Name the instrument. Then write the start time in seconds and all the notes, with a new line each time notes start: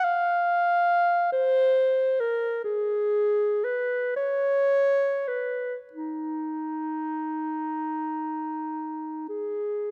clarinet
0.04 F5
1.32 C5
2.20 A#4
2.64 G#4
3.64 B4
4.16 C#5
5.28 B4
5.93 D#4
9.29 G#4